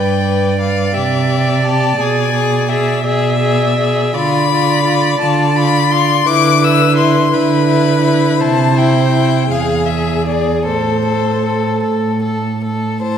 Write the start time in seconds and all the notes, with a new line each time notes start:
Already playing: G2 B4 D5 G5
0.24 B4
0.59 B4 F5
0.93 C3 G4 E5
1.27 G4
1.63 G4 A5
1.98 B2 G#4 G#5
2.32 G#4
2.69 G#4 E5
3.04 B2 G#4 D5 E5
3.39 G#4
3.78 G#4
4.14 D3 F4 D5 B5
4.51 F4
4.84 F4
5.20 D3 F4 A5
5.56 F4 B5
5.90 F4 C6
6.26 D3 E4 B4 D6
6.61 E4 E6
6.95 E4 C6
7.31 D3 E4 B4 B5
7.67 E4
8.01 E4
8.39 C3 E4 C5 A5
8.74 E4 G5
9.12 E4
9.50 E2 G#4 F5
9.86 G#4 E5
10.27 G#4 D5
10.66 A2 A4 C5
11.05 A4
11.45 A4
11.83 A2 A4
12.22 A4
12.64 A4
13.02 A2 E4 C5 A5